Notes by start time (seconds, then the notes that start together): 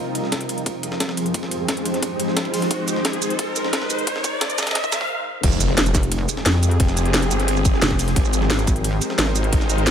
Already playing: F3 C4 F4 G4 G#4 A#4 D#5, riser
0.00 F3
0.14 C5, closed hi-hat, ride
0.24 snare
0.32 kick, snare, closed hi-hat, ride
0.38 G#3, closed hi-hat
0.43 D#4
0.49 closed hi-hat, ride
0.58 closed hi-hat
0.66 kick, closed hi-hat, ride
0.83 closed hi-hat, ride
0.92 snare
1.00 kick, snare, closed hi-hat, ride
1.09 snare
1.17 closed hi-hat, ride
1.26 closed hi-hat
1.34 kick, closed hi-hat, ride
1.43 snare
1.51 closed hi-hat, ride
1.68 kick, snare, closed hi-hat, ride
1.77 closed hi-hat
1.85 closed hi-hat, ride
1.94 snare, closed hi-hat
2.03 kick, closed hi-hat, ride
2.20 closed hi-hat, ride
2.28 snare
2.37 kick, snare, closed hi-hat, ride
2.45 ride
2.54 closed hi-hat, open hi-hat
2.62 snare, closed hi-hat
2.71 G#3 D#4 A#4 C5, kick, closed hi-hat, ride
2.88 closed hi-hat, ride, shaker
2.96 snare
3.05 kick, snare, closed hi-hat, ride
3.13 closed hi-hat
3.22 closed hi-hat, ride, shaker
3.30 closed hi-hat
3.39 kick, closed hi-hat, ride
3.56 closed hi-hat, ride, shaker
3.64 snare
3.73 kick, snare, closed hi-hat, ride
3.82 snare
3.90 closed hi-hat, ride, shaker
3.99 closed hi-hat
4.07 kick, closed hi-hat, ride
4.16 snare
4.24 kick, closed hi-hat, ride, shaker
4.41 kick, snare, closed hi-hat, ride
4.50 closed hi-hat, shaker
4.58 kick, snare, closed hi-hat, ride, shaker
4.63 snare, ride
4.67 snare, closed hi-hat, ride
4.71 snare, ride
4.75 kick, snare, closed hi-hat, ride
4.84 kick, shaker
4.92 kick, snare, closed hi-hat, ride, shaker
5.01 kick, snare
5.43 F1 F3 C4 G4 G#4, kick, closed hi-hat, ride, crash, impact
5.52 shaker
5.61 closed hi-hat, ride, shaker
5.69 snare
5.78 snare, closed hi-hat, ride
5.86 closed hi-hat, shaker
5.95 F1, kick, snare, closed hi-hat, ride, shaker
6.03 closed hi-hat
6.12 closed hi-hat, ride
6.29 closed hi-hat, ride, shaker
6.37 snare
6.46 F2, snare, closed hi-hat, ride
6.54 snare
6.63 closed hi-hat, ride, shaker
6.71 closed hi-hat
6.80 F1, kick, closed hi-hat, ride
6.88 snare, shaker
6.97 closed hi-hat, ride, shaker
7.05 closed hi-hat
7.14 snare, closed hi-hat, ride
7.22 closed hi-hat, shaker
7.31 G1, closed hi-hat, ride, shaker
7.40 snare, closed hi-hat
7.48 closed hi-hat, ride
7.57 shaker
7.65 kick, closed hi-hat, ride, shaker
7.74 snare
7.82 F1, snare, closed hi-hat, ride
7.91 kick, snare, ride
7.99 closed hi-hat, open hi-hat, shaker
8.08 snare, closed hi-hat
8.16 G#1 G#3 D#4 G4 A#4 C5, kick, closed hi-hat, ride
8.25 shaker
8.33 closed hi-hat, ride, shaker
8.42 snare
8.50 snare, closed hi-hat, ride
8.59 closed hi-hat, shaker
8.67 G#1, kick, closed hi-hat, ride, shaker
8.76 closed hi-hat
8.80 F5, closed hi-hat, ride
9.02 closed hi-hat, ride, shaker
9.10 snare
9.19 G#1, snare, closed hi-hat, ride
9.27 snare
9.36 closed hi-hat, ride, shaker
9.44 closed hi-hat
9.53 G#1, kick, closed hi-hat, ride
9.61 snare, shaker
9.70 closed hi-hat, ride, shaker
9.78 closed hi-hat
9.87 snare, closed hi-hat, ride